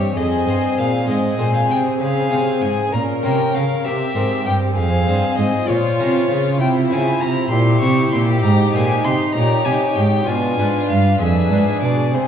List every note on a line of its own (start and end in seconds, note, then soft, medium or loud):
0.00 0.13 G2 soft
0.00 0.16 G2 soft
0.00 0.12 C4 soft
0.00 0.12 G4 soft
0.00 0.18 C#5 medium
0.00 0.12 E5 soft
0.16 0.46 F2 soft
0.16 0.44 F2 soft
0.16 1.07 C4 soft
0.16 1.07 G#4 soft
0.16 1.07 C5 soft
0.16 0.80 D#5 medium
0.47 0.55 G2 soft
0.47 0.75 G2 soft
0.47 0.69 C4 soft
0.47 0.92 G#4 soft
0.47 0.92 C5 soft
0.78 1.08 A#2 soft
0.78 1.06 A#2 soft
0.78 1.08 F5 medium
1.08 1.36 G#2 soft
1.08 1.39 G#2 soft
1.08 1.38 G#3 soft
1.08 2.89 C4 soft
1.08 1.99 G#4 soft
1.08 1.99 C5 soft
1.08 1.54 D#5 soft
1.38 1.67 A#2 soft
1.38 1.69 A#2 soft
1.38 1.83 C4 soft
1.38 1.83 G#4 soft
1.38 1.84 C5 soft
1.54 1.60 F5 medium
1.69 1.97 C3 soft
1.69 2.01 C3 soft
1.69 1.78 G5 medium
2.00 2.28 C#3 soft
2.00 2.32 C#3 soft
2.00 2.91 G#4 soft
2.00 2.91 C5 soft
2.00 2.63 F5 medium
2.31 2.59 C3 soft
2.31 2.62 C3 soft
2.31 2.75 F4 soft
2.31 2.76 G#4 soft
2.31 2.76 C#5 soft
2.61 2.70 G#2 soft
2.61 2.90 G#2 soft
2.61 2.93 G#5 medium
2.92 3.00 A#2 soft
2.92 3.21 A#2 soft
2.92 3.86 C#4 soft
2.92 3.85 A#4 soft
2.92 4.77 A#4 soft
2.92 3.01 A#5 medium
3.23 3.51 C3 soft
3.23 3.54 C3 soft
3.23 3.68 F4 soft
3.23 3.68 A#4 soft
3.23 3.68 C#5 soft
3.23 3.56 G5 medium
3.54 3.82 C#3 soft
3.54 3.63 C#3 soft
3.54 3.86 F5 medium
3.84 4.13 C3 soft
3.84 4.16 C3 soft
3.84 5.69 C4 soft
3.84 4.77 G4 soft
3.84 4.45 E5 medium
4.15 4.43 G#2 soft
4.15 4.46 G#2 soft
4.15 4.60 C4 soft
4.15 4.60 A#4 soft
4.15 4.60 C5 soft
4.46 4.74 G2 soft
4.46 4.77 G2 soft
4.46 4.54 G5 medium
4.77 5.04 F2 soft
4.77 5.08 F2 medium
4.77 5.67 G#4 soft
4.77 6.59 C5 soft
4.77 5.37 F5 medium
5.08 5.35 G2 soft
5.08 5.16 G2 soft
5.08 5.52 C4 soft
5.08 5.52 G#4 soft
5.08 5.52 C5 soft
5.38 5.46 G#2 soft
5.38 5.66 G#2 soft
5.38 5.70 D#5 medium
5.68 5.96 A#2 soft
5.68 5.77 A#2 soft
5.68 6.60 F4 soft
5.68 7.48 F4 soft
5.68 6.60 C#5 medium
5.99 6.27 C3 soft
5.99 6.29 C3 soft
5.99 6.43 C#4 soft
5.99 6.44 F4 soft
5.99 6.44 A#4 soft
6.30 6.57 C#3 soft
6.30 6.60 C#3 soft
6.60 6.88 C3 soft
6.60 6.91 C3 medium
6.60 7.52 E4 soft
6.60 9.31 C5 soft
6.60 6.69 G5 medium
6.90 7.21 C#3 soft
6.90 7.18 C#3 soft
6.90 7.35 C4 soft
6.90 7.35 E4 soft
6.90 7.35 G4 soft
6.90 7.22 G#5 medium
7.21 7.48 C3 soft
7.21 7.51 C3 soft
7.21 7.50 A#5 medium
7.50 7.81 A#2 medium
7.50 7.79 A#2 soft
7.50 8.41 E4 soft
7.50 9.34 G4 soft
7.50 7.80 C6 medium
7.81 8.09 C3 soft
7.81 8.12 C3 medium
7.81 8.26 C4 soft
7.81 8.26 E4 soft
7.81 8.27 G4 soft
7.81 8.11 C#6 medium
8.12 8.40 A#2 soft
8.12 8.43 A#2 soft
8.12 8.20 C6 medium
8.43 8.70 G#2 soft
8.43 8.74 G#2 medium
8.43 10.27 D#4 medium
8.43 8.73 A#5 medium
8.73 9.01 A#2 soft
8.73 9.04 A#2 medium
8.73 9.18 C4 soft
8.73 9.18 F4 soft
8.73 9.18 G#4 soft
8.73 9.06 G#5 medium
9.04 9.12 C3 soft
9.04 9.32 C3 soft
9.04 9.34 C6 medium
9.35 9.62 A#2 soft
9.35 9.65 A#2 medium
9.35 10.25 G4 soft
9.35 10.25 C#5 medium
9.35 9.66 A#5 medium
9.64 9.73 C3 soft
9.64 9.93 C3 soft
9.64 10.10 C#4 soft
9.64 10.10 G4 soft
9.64 10.10 C#5 soft
9.64 9.97 G#5 medium
9.95 10.24 G#2 soft
9.95 10.26 G#2 soft
9.95 10.29 G5 medium
10.26 10.57 B2 medium
10.26 10.55 B2 soft
10.26 11.17 D4 soft
10.26 11.20 F4 soft
10.26 12.13 B4 medium
10.26 10.88 G#5 medium
10.58 10.66 G#2 soft
10.58 10.86 G#2 soft
10.58 11.25 D4 soft
10.58 11.25 F4 soft
10.58 11.25 B4 soft
10.88 11.19 G2 soft
10.88 11.17 G2 soft
10.88 11.19 F5 medium
11.19 11.50 F2 soft
11.19 11.48 F2 soft
11.19 12.12 D4 soft
11.19 12.12 G#4 soft
11.19 11.81 E5 medium
11.50 11.58 G#2 soft
11.50 11.79 G#2 soft
11.50 11.96 D4 soft
11.50 11.96 F4 soft
11.50 11.97 B4 soft
11.82 12.13 B2 soft
11.82 12.11 B2 soft
11.82 12.15 D5 medium
12.13 12.28 C3 soft
12.13 12.28 C4 soft
12.13 12.28 G#4 soft
12.13 12.28 C5 soft